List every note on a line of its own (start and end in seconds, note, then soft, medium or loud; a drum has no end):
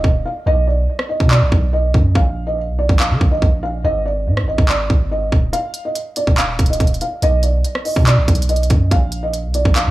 0.00 0.23 D#5 medium
0.04 0.24 D#1 loud
0.04 kick loud
0.25 0.44 F5 medium
0.46 0.87 B1 loud
0.46 0.65 D#5 loud
0.67 1.07 D5 medium
0.99 cross-stick medium
1.09 1.28 D#5 medium
1.20 1.43 B2 loud
1.20 kick loud
1.31 1.70 D5 medium
1.31 clap loud
1.41 1.51 A#1 loud
1.52 1.93 B1 loud
1.52 kick loud
1.73 2.13 D#5 medium
1.94 2.14 F#2 loud
1.94 kick loud
2.15 2.70 A#1 loud
2.15 2.45 F5 medium
2.15 kick loud
2.47 2.56 D#5 medium
2.68 2.88 B1 loud
2.79 2.97 D5 medium
2.89 3.12 A#1 loud
2.89 kick medium
3.00 3.29 F5 medium
3.00 clap loud
3.10 3.20 D3 loud
3.21 3.41 A#1 loud
3.21 kick loud
3.31 3.61 D#5 medium
3.42 3.83 A#1 loud
3.42 kick loud
3.63 3.82 F5 medium
3.84 4.28 G#1 loud
3.84 4.03 D#5 loud
4.05 4.45 D5 medium
4.27 4.44 G#2 loud
4.37 cross-stick medium
4.42 4.57 G#1 loud
4.48 4.66 D#5 medium
4.58 4.89 G#1 loud
4.58 kick medium
4.69 5.09 D5 medium
4.69 clap loud
4.90 5.31 G#1 loud
4.90 kick loud
5.11 5.51 D#5 medium
5.32 5.53 D#1 loud
5.32 kick loud
5.53 5.83 F5 loud
5.53 closed hi-hat medium
5.74 closed hi-hat medium
5.85 5.94 D#5 medium
5.95 closed hi-hat medium
6.16 6.35 D5 medium
6.16 closed hi-hat medium
6.27 6.58 D#1 loud
6.27 kick medium
6.38 6.68 F5 medium
6.38 clap loud
6.38 closed hi-hat medium
6.59 6.79 D#1 loud
6.59 kick loud
6.59 closed hi-hat medium
6.66 7.00 D#5 medium
6.66 closed hi-hat medium
6.73 closed hi-hat medium
6.80 7.00 D#1 loud
6.80 kick loud
6.80 closed hi-hat medium
6.87 closed hi-hat medium
6.94 closed hi-hat soft
7.01 7.20 F5 medium
7.01 closed hi-hat medium
7.22 7.63 B1 loud
7.22 7.41 D#5 loud
7.22 closed hi-hat medium
7.43 7.83 D5 medium
7.43 closed hi-hat medium
7.64 closed hi-hat medium
7.75 cross-stick medium
7.85 8.04 D#5 medium
7.85 open hi-hat medium
7.96 8.19 B2 loud
7.96 kick loud
8.07 8.47 D5 medium
8.07 clap loud
8.07 closed hi-hat medium
8.17 8.27 A#1 loud
8.28 8.69 B1 loud
8.28 kick loud
8.28 closed hi-hat medium
8.35 closed hi-hat medium
8.42 closed hi-hat medium
8.49 8.89 D#5 medium
8.49 closed hi-hat medium
8.56 closed hi-hat medium
8.63 closed hi-hat soft
8.70 8.91 F#2 loud
8.70 kick medium
8.70 closed hi-hat medium
8.91 9.46 A#1 loud
8.91 9.21 F5 medium
8.91 kick loud
8.91 closed hi-hat medium
9.12 closed hi-hat medium
9.23 9.32 D#5 medium
9.33 closed hi-hat medium
9.44 9.64 B1 loud
9.54 9.73 D5 medium
9.54 closed hi-hat medium
9.65 9.88 A#1 loud
9.65 kick medium
9.76 9.91 F5 medium
9.76 clap loud
9.76 closed hi-hat medium
9.86 9.91 D3 loud